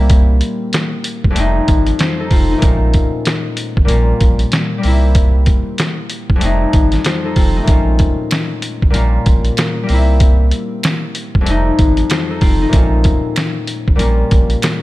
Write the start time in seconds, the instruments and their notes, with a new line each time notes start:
Already playing: sub bass C2, harp G3 A#3 C4 E4
0.10 kick, closed hi-hat
0.41 closed hi-hat
0.73 snare, closed hi-hat
1.04 closed hi-hat
1.24 sub bass C2, kick
1.30 harp F2 G3
1.35 sub bass F1, harp A3 C4, closed hi-hat
1.40 harp D#4
1.68 sub bass G#1, kick, closed hi-hat
1.87 closed hi-hat
1.99 harp F4 C5, snare, closed hi-hat
2.19 harp D#4 A4
2.31 sub bass F1, harp C4 F4, kick, open hi-hat
2.51 harp A3 D#4
2.58 harp A#2 G#3
2.62 sub bass A#1, harp C4 C#4, kick, closed hi-hat
2.67 harp F4
2.94 kick, closed hi-hat
3.25 snare, closed hi-hat
3.57 closed hi-hat
3.77 sub bass G#1, kick
3.85 harp A#2 G3 A#3 C#4, closed hi-hat
3.89 sub bass A#1, harp F4
4.21 sub bass A#1, kick, closed hi-hat
4.39 closed hi-hat
4.52 snare, closed hi-hat
4.78 harp G3 A#3
4.83 sub bass C2, harp C4 E4, open hi-hat
5.15 kick, closed hi-hat
5.46 kick, closed hi-hat
5.78 snare, closed hi-hat
6.10 closed hi-hat
6.30 sub bass C2, kick
6.36 harp F2 G3
6.40 sub bass F1, harp A3 C4, closed hi-hat
6.45 harp D#4
6.73 sub bass G#1, kick, closed hi-hat
6.92 snare, closed hi-hat
7.04 harp F4 C5, snare, closed hi-hat
7.25 harp D#4 A4
7.36 sub bass F1, harp C4 F4, kick, open hi-hat
7.57 harp A3 D#4
7.63 harp A#2 G#3
7.68 sub bass A#1, harp C4 C#4, kick, closed hi-hat
7.73 harp F4
7.99 kick, closed hi-hat
8.31 finger snap, snare, closed hi-hat
8.62 closed hi-hat
8.82 sub bass G#1, kick
8.90 harp A#2 G3 A#3 C#4, closed hi-hat
8.95 sub bass A#1, harp F4
9.26 sub bass A#1, kick, closed hi-hat
9.45 closed hi-hat
9.57 finger snap, snare, closed hi-hat
9.83 harp G3 A#3
9.89 sub bass C2, harp C4 E4, open hi-hat
10.20 kick, closed hi-hat
10.51 closed hi-hat
10.83 finger snap, snare, closed hi-hat
11.15 closed hi-hat
11.35 sub bass C2, kick
11.41 harp F2 G3
11.45 sub bass F1, harp A3 C4, closed hi-hat
11.50 harp D#4
11.79 sub bass G#1, kick, closed hi-hat
11.97 closed hi-hat
12.10 harp F4 C5, finger snap, snare, closed hi-hat
12.30 harp D#4 A4
12.41 sub bass F1, harp C4 F4, kick, open hi-hat
12.62 harp A3 D#4
12.69 harp A#2 G#3
12.73 sub bass A#1, harp C4 C#4, kick, closed hi-hat
12.78 harp F4
13.04 kick, closed hi-hat
13.36 finger snap, snare, closed hi-hat
13.67 closed hi-hat
13.88 sub bass G#1, kick
13.96 harp A#2 G3 A#3 C#4, closed hi-hat
14.00 sub bass A#1, harp F4
14.31 sub bass A#1, kick, closed hi-hat
14.50 closed hi-hat
14.62 finger snap, snare, closed hi-hat